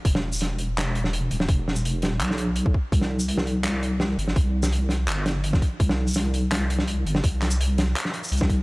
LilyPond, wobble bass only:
\new Staff \with { instrumentName = "Wobble bass" } { \clef bass \time 4/4 \key c \lydian \tempo 4 = 167 e,,2.~ e,,8 d,,8 | e,,2 b,,4. r8 | c,2.~ c,8 g,,8 | c,2 g,,4. r8 |
c,2.~ c,8 g,,8 | c,2 r4 c,4 | }